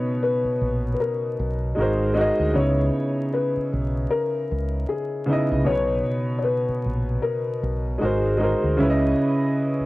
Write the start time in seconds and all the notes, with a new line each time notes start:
Already playing: B2 B3 D#4 B4 C#5
0.23 B4
0.45 muted fingered electric bass stroke
0.61 A#1
0.94 B4
1.00 A#4
1.39 B1
1.75 G#1 G#3 D#4 F#4
1.80 A#4 C5
2.14 G#3 D#4 F#4
2.19 A#4 D#5
2.40 D2
2.53 C#2 C#3 B3 D#4 C#5
2.58 E4 C#5
3.34 B4
3.57 muted fingered electric bass stroke
3.73 B1
4.10 A#4
4.51 C#2
4.89 G#4
5.26 C#3 B3 D#4
5.31 E4 D#5
5.52 C2
5.65 B1 B2 B3 D#4 C#5
5.70 B4 C#5
6.39 C#5
6.44 B4
6.69 muted fingered electric bass stroke
6.86 A#1
7.22 A#4
7.63 B1
7.98 G#3 D#4 F#4 G#4
8.03 G#1 A#4 C5
8.37 G#3 D#4 F#4
8.43 A#4 C5
8.64 D2
8.77 C#2 C#3 C#4 E4
8.82 B4 C#5
8.90 D#5
9.80 muted fingered electric bass stroke